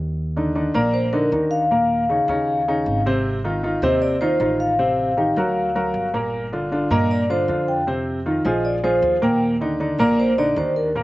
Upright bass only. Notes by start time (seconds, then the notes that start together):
Already playing: D#2
0.74 A#1
1.32 D#2
2.28 D#2
2.86 G#1
3.82 D#2
4.40 A1
5.36 D2
5.94 G1
6.90 G2
7.48 F2
8.45 A#1
9.02 D#2
9.98 A#1
10.56 D#2